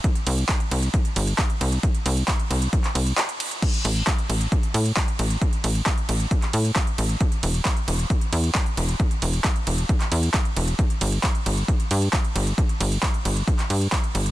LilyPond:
<<
  \new Staff \with { instrumentName = "Analog synth bass" } { \clef bass \time 4/4 \key c \major \tempo 4 = 134 r8 c,8 r8 c,8 r8 g,,8 r8 c,8 | r8 c,8 r8 c,8 r8 c,8 r4 | r8 a,,8 r8 a,,8 r8 a,8 r8 a,,8 | r8 a,,8 r8 a,,8 r8 a,8 r8 a,,8 |
r8 e,,8 r8 e,,8 r8 e,8 r8 e,,8 | r8 e,,8 r8 e,,8 r8 e,8 r8 e,,8 | r8 g,,8 r8 g,,8 r8 g,8 r8 g,,8 | r8 g,,8 r8 g,,8 r8 g,8 r8 g,,8 | }
  \new DrumStaff \with { instrumentName = "Drums" } \drummode { \time 4/4 <hh bd>16 hh16 <hho cymr>16 hh16 <hc hh bd>16 hh16 <hho cymr>16 hh16 <hh bd>16 hh16 <hho cymr>16 hh16 <hc hh bd>16 hh16 <hho cymr>16 hh16 | <hh bd>16 hh16 <hho cymr>16 hh16 <hc hh bd>16 hh16 <hho cymr>16 hh16 <hh bd>16 <hc hh>16 <hho cymr>16 hh16 <hc hh>16 hh16 <hho cymr>16 hh16 | <cymc hh bd>16 hh16 <hho cymr>16 hh16 <hc hh bd>16 hh16 <hho cymr>16 hh16 <hh bd>16 hh16 <hho cymr>16 hh16 <hc hh bd>16 hh16 <hho cymr>16 hh16 | <hh bd>16 hh16 <hho cymr>16 hh16 <hc hh bd>16 hh16 <hho cymr>16 hh16 <hh bd>16 <hc hh>16 <hho cymr>16 hh16 <hc hh bd>16 hh16 <hho cymr>16 hh16 |
<hh bd>16 hh16 <hho cymr>16 hh16 <hc hh bd>16 hh16 <hho cymr>16 hh16 <hh bd>16 hh16 <hho cymr>16 hh16 <hc hh bd>16 hh16 <hho cymr>16 hh16 | <hh bd>16 hh16 <hho cymr>16 hh16 <hc hh bd>16 hh16 <hho cymr>16 hh16 <hh bd>16 <hc hh>16 <hho cymr>16 hh16 <hc hh bd>16 hh16 <hho cymr>16 hh16 | <hh bd>16 hh16 <hho cymr>16 hh16 <hc hh bd>16 hh16 <hho cymr>16 hh16 <hh bd>16 hh16 <hho cymr>16 hh16 <hc hh bd>16 hh16 <hho cymr>16 hh16 | <hh bd>16 hh16 <hho cymr>16 hh16 <hc hh bd>16 hh16 <hho cymr>16 hh16 <hh bd>16 <hc hh>16 <hho cymr>16 hh16 <hc hh bd>16 hh16 <hho cymr>16 hh16 | }
>>